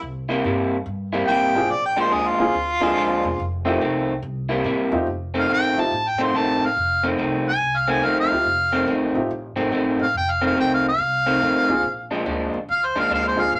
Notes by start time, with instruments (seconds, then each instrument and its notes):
Already playing: harmonica E4
0.01 upright bass C2
0.29 clean electric guitar C3 G3 A#3 E4
0.44 upright bass G2, clean electric guitar C3 G3 A#3 E4
0.86 upright bass G2
1.13 clean electric guitar C3 G3 A#3 E4
1.28 upright bass A2, clean electric guitar C3 G3 A#3 E4, harmonica G5
1.55 upright bass A1, upright piano A#3 C4 D4 F4 G#4
1.71 upright bass A#1, harmonica D5
1.85 harmonica G5
1.97 clean electric guitar A#2 F3 G#3 D4, harmonica C5
2.11 upright bass D2, clean electric guitar A#2 F3 G#3 D4, harmonica G#4
2.27 harmonica F4
2.39 upright bass D2, upright piano A#3 C4 D4 F4 G#4
2.54 upright bass D2
2.80 upright bass D2, clean electric guitar A#2 F3 G#3 D4, upright piano A#3 C4 D4 F4 G#4
2.96 upright bass D2, clean electric guitar A#2 F3 G#3 D4
3.24 upright bass E1
3.39 upright bass F1
3.65 clean electric guitar F2 D#3 A3 C4, upright piano A3 C4 D#4 F4 G4
3.81 upright bass C2, clean electric guitar F2 D#3 A3 C4
4.22 upright bass C2
4.49 clean electric guitar C3 G3 A#3 E4
4.64 upright bass A2, clean electric guitar C3 G3 A#3 E4
4.91 upright bass E2, upright piano A3 C4 D#4 F4 G4
5.07 upright bass F1
5.34 clean electric guitar F2 D#3 A3 C4
5.39 harmonica F5
5.49 upright bass A1, clean electric guitar F2 D#3 A3 C4
5.53 harmonica G5
5.76 upright bass A1, upright piano A3 C4 D#4 F4 G4
5.80 harmonica A5
5.92 upright bass A1
6.09 harmonica G5
6.18 upright bass A1, clean electric guitar F2 D#3 A3 C4
6.23 harmonica C6
6.34 upright bass A1, clean electric guitar F2 D#3 A3 C4, harmonica A5
6.61 upright bass A1
6.66 harmonica F5
6.76 upright bass F1
7.03 clean electric guitar F2 D#3 A3 C4
7.18 upright bass C2, clean electric guitar F2 D#3 A3 C4
7.49 harmonica G#5
7.61 upright bass C2
7.77 harmonica F5
7.88 clean electric guitar F2 D#3 A3 C4, harmonica G#5
8.03 upright bass D2, clean electric guitar F2 D#3 A3 C4, harmonica F5
8.20 harmonica F5
8.30 upright bass D2, upright piano A3 C4 D#4 F4 G4
8.45 upright bass F1
8.72 clean electric guitar F2 D#3 A3 C4
8.87 upright bass A1, clean electric guitar F2 D#3 A3 C4
9.15 upright bass A1, upright piano A3 C4 D#4 F4 G4
9.31 upright bass A1
9.56 upright bass A1, clean electric guitar F2 D#3 A3 C4
9.72 upright bass A1, clean electric guitar F2 D#3 A3 C4
9.99 upright bass A1, harmonica F5
10.14 upright bass F1, harmonica G5
10.31 harmonica F5
10.41 clean electric guitar F2 D#3 A3 C4
10.46 harmonica F5
10.57 upright bass C2, clean electric guitar F2 D#3 A3 C4, harmonica G5
10.74 harmonica F5
10.89 harmonica F5
10.98 upright bass C2
11.26 clean electric guitar F2 D#3 A3 C4
11.41 upright bass D2, clean electric guitar F2 D#3 A3 C4
11.69 upright bass D2, upright piano A#3 C4 D4 F4 G#4
11.83 upright bass A#1
12.11 clean electric guitar A#2 F3 G#3 D4
12.25 upright bass D2, clean electric guitar A#2 F3 G#3 D4
12.54 upright bass D2
12.69 upright bass D2, harmonica F5
12.85 harmonica C5
12.95 upright bass D2, clean electric guitar A#2 F3 G#3 D4
13.00 harmonica F5
13.10 upright bass D2, clean electric guitar A#2 F3 G#3 D4, harmonica F5
13.28 harmonica C5
13.36 upright bass D2, upright piano A#3 C4 D4 F4 G#4
13.41 harmonica F5
13.52 upright bass A#1, harmonica F5